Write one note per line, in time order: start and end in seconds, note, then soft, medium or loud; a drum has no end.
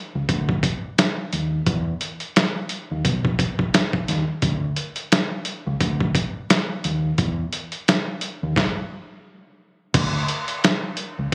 0.15 0.26 C#2 medium
0.29 0.55 D2 medium
0.29 kick medium
0.29 closed hi-hat medium
0.49 kick medium
0.63 kick medium
0.63 closed hi-hat medium
0.98 snare loud
0.98 closed hi-hat loud
1.33 1.59 D#2 medium
1.33 closed hi-hat medium
1.66 1.93 E2 loud
1.66 kick loud
1.66 closed hi-hat medium
2.01 closed hi-hat medium
2.20 closed hi-hat soft
2.36 snare loud
2.36 closed hi-hat medium
2.69 closed hi-hat medium
2.91 3.02 D#2 medium
3.05 3.31 B1 loud
3.05 kick medium
3.05 closed hi-hat medium
3.25 kick loud
3.39 kick medium
3.39 closed hi-hat medium
3.59 kick medium
3.74 snare loud
3.74 closed hi-hat loud
3.93 kick loud
4.08 4.24 D#2 medium
4.08 snare soft
4.08 closed hi-hat medium
4.42 4.69 D2 loud
4.42 kick loud
4.42 closed hi-hat medium
4.76 closed hi-hat medium
4.96 closed hi-hat soft
5.12 snare loud
5.12 closed hi-hat medium
5.45 closed hi-hat medium
5.67 5.77 C#2 medium
5.81 6.07 D2 medium
5.81 kick medium
5.81 closed hi-hat medium
6.00 kick medium
6.15 kick medium
6.15 closed hi-hat medium
6.50 snare loud
6.50 closed hi-hat loud
6.84 7.11 D#2 medium
6.84 closed hi-hat medium
7.18 7.45 E2 loud
7.18 kick loud
7.18 closed hi-hat medium
7.53 closed hi-hat medium
7.72 closed hi-hat medium
7.88 snare loud
7.88 closed hi-hat medium
8.21 closed hi-hat medium
8.43 8.53 D#2 medium
8.56 kick loud
8.56 snare medium
9.94 10.21 D2 loud
9.94 kick loud
9.94 closed hi-hat medium
9.94 crash loud
10.28 closed hi-hat medium
10.48 closed hi-hat medium
10.64 snare loud
10.64 closed hi-hat medium
10.97 closed hi-hat medium
11.19 11.29 C#2 medium